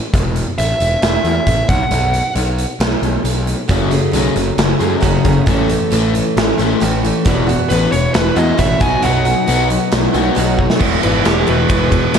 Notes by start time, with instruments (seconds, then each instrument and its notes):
0.14 picked electric bass E1, kick, closed hi-hat
0.36 closed hi-hat
0.58 picked electric bass A1, lead electric guitar E5, closed hi-hat
0.80 picked electric bass E1, closed hi-hat
1.02 picked electric bass E1, lead electric guitar E5, snare, closed hi-hat
1.24 picked electric bass E2, closed hi-hat
1.47 picked electric bass A1, kick, closed hi-hat
1.69 picked electric bass B1, lead electric guitar F#5, kick, closed hi-hat
1.91 picked electric bass B1, closed hi-hat
2.14 closed hi-hat
2.36 picked electric bass B1, closed hi-hat
2.58 closed hi-hat
2.80 picked electric bass B1, snare, closed hi-hat
3.02 picked electric bass B1, closed hi-hat
3.24 picked electric bass B1, closed hi-hat
3.47 closed hi-hat
3.68 picked electric bass F#1, steel-string acoustic guitar F#2 C#3 F#3 A3 C#4 G#4, overdriven electric guitar F#2 C#3 F#3, kick, closed hi-hat
3.91 overdriven electric guitar F#2 C#3, steel-string acoustic guitar F#3 A3 C#4 G#4, closed hi-hat
4.12 picked electric bass B1, overdriven electric guitar F#2 C#3 F#3, steel-string acoustic guitar F#3 A3 C#4 G#4, closed hi-hat
4.36 picked electric bass F#1, overdriven electric guitar F#2 C#3, closed hi-hat
4.58 picked electric bass F#1, overdriven electric guitar F#2 C#3, snare, closed hi-hat
4.79 overdriven electric guitar F#2 C#3 F#3, picked electric bass F#2, steel-string acoustic guitar F#3 A3 C#4 G#4, closed hi-hat
5.01 picked electric bass F#1, steel-string acoustic guitar F#2 C#3 F#3 A3 C#4 G#4, overdriven electric guitar F#2 C#3, kick, closed hi-hat
5.24 picked electric bass F#1, overdriven electric guitar F#2 C#3, steel-string acoustic guitar F#3 A3 C#4 G#4, kick, closed hi-hat
5.46 picked electric bass A1, steel-string acoustic guitar A2 E3 A3 C#4 A4, overdriven electric guitar A2 E3 A3, kick, closed hi-hat
5.68 overdriven electric guitar A2 E3, steel-string acoustic guitar A3 C#4 A4, closed hi-hat
5.91 picked electric bass A1, overdriven electric guitar A2 E3 A3, steel-string acoustic guitar E3 A3 C#4 A4, closed hi-hat
6.14 overdriven electric guitar A2 E3, closed hi-hat
6.37 picked electric bass A1, overdriven electric guitar A2 E3, snare, closed hi-hat
6.58 picked electric bass A1, overdriven electric guitar A2 E3 A3, steel-string acoustic guitar A3 C#4 A4, closed hi-hat
6.80 picked electric bass A1, steel-string acoustic guitar A2 E3 A3 C#4 A4, overdriven electric guitar A2 E3, closed hi-hat
7.03 overdriven electric guitar A2 E3, steel-string acoustic guitar A3 C#4 A4, closed hi-hat
7.25 picked electric bass E1, steel-string acoustic guitar E2 B2 E3 B3 E4 F#4, overdriven electric guitar E2 B2 E3, kick, closed hi-hat
7.47 overdriven electric guitar E2 B2, steel-string acoustic guitar E3 B3 E4 F#4, closed hi-hat
7.69 picked electric bass A1, overdriven electric guitar E2 B2 E3, steel-string acoustic guitar E3 B3 E4 F#4, lead electric guitar B4, closed hi-hat
7.92 picked electric bass E1, overdriven electric guitar E2 B2, lead electric guitar C#5, closed hi-hat
8.14 picked electric bass E1, overdriven electric guitar E2 B2, lead electric guitar B4, snare, closed hi-hat
8.35 overdriven electric guitar E2 B2 E3, picked electric bass E2, steel-string acoustic guitar E3 B3 E4 F#4, lead electric guitar D#5, closed hi-hat
8.57 picked electric bass A1, steel-string acoustic guitar E2 B2 E3 B3 E4 F#4, overdriven electric guitar E2 B2, lead electric guitar E5, kick, closed hi-hat
8.80 picked electric bass B1, overdriven electric guitar B2 F#3 B3, steel-string acoustic guitar B2 F#3 B3 D#4 F#4, lead electric guitar G#5, kick, closed hi-hat
9.02 picked electric bass B1, steel-string acoustic guitar B2 F#3 B3 D#4 F#4, overdriven electric guitar B2 F#3 B3, lead electric guitar F#5, closed hi-hat
9.24 overdriven electric guitar B2 F#3, steel-string acoustic guitar B3 D#4 F#4, closed hi-hat
9.46 picked electric bass B1, overdriven electric guitar B2 F#3 B3, steel-string acoustic guitar F#3 B3 D#4 F#4, closed hi-hat
9.70 overdriven electric guitar B2 F#3, closed hi-hat
9.92 picked electric bass B1, overdriven electric guitar B2 F#3, snare, closed hi-hat
10.13 picked electric bass B1, overdriven electric guitar B2 F#3 B3, steel-string acoustic guitar B3 D#4 F#4, closed hi-hat
10.35 picked electric bass B1, steel-string acoustic guitar B2 F#3 B3 D#4 F#4, overdriven electric guitar B2 F#3, closed hi-hat
10.57 overdriven electric guitar B2 F#3, steel-string acoustic guitar B3 D#4 F#4, kick
10.70 snare
10.79 picked electric bass E1, overdriven electric guitar E2 B2 E3, steel-string acoustic guitar E2, kick, crash
11.01 picked electric bass G#1, steel-string acoustic guitar B2, lead electric guitar B4, ride
11.25 picked electric bass E1, steel-string acoustic guitar G#3, lead electric guitar G4, snare, ride
11.46 picked electric bass E1, overdriven electric guitar E2 B2 E3, steel-string acoustic guitar F#3, lead electric guitar B4, ride
11.69 picked electric bass E1, steel-string acoustic guitar G#3, lead electric guitar B4, kick, ride
11.91 steel-string acoustic guitar F#3, kick, ride
12.14 picked electric bass E1, steel-string acoustic guitar B3, snare, ride